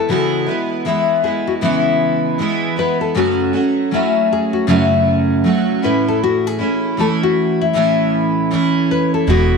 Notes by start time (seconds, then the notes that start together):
Already playing: A4
0.09 C#3 E3 G#3 B3 E4 F#4
0.46 G#3 B3 E4
0.85 E3 G#3 B3 E4
1.23 G#3 B3 E4 G#4
1.47 F#4
1.61 C#3 E3 G#3 B3 E4
2.38 E3 G#3 B3 E4
2.76 G#3 B3 E4 B4
3.01 A4
3.15 F#2 C#3 F#3 A3 C#4 F#4
3.53 F#3 A3 C#4 F#4
3.91 F#3 A3 C#4 E4 F#4
4.33 G#4
4.53 F#4
4.67 F#2 C#3 F#3 A3 C#4 E4 F#4
5.44 F#3 A3 C#4 F#4
5.82 A2 E3 A3 C#4 E4 B4
6.08 A4
6.24 F#4
6.47 G#4
6.59 A3 C#4 E4
6.97 E3 A3 C#4 E4 A4
7.23 F#4
7.61 E4
7.73 A2 E3 A3 C#4 E4
8.51 E3 A3 C#4 E4
8.91 B4
9.14 A4
9.27 E1 E2 B2 E3 G#3 B3 E4 F#4